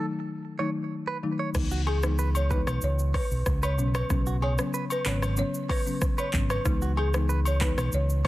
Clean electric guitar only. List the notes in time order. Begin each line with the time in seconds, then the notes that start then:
0.59 C#5
1.07 B4
1.39 C#5
1.71 F#4
1.87 G#4
2.19 B4
2.51 B4
3.14 C#5
3.63 B4
3.95 C#5
4.27 F#4
4.42 G#4
4.74 B4
5.06 B4
5.70 C#5
6.18 B4
6.50 C#5
6.82 F#4
6.97 G#4
7.29 B4
7.61 B4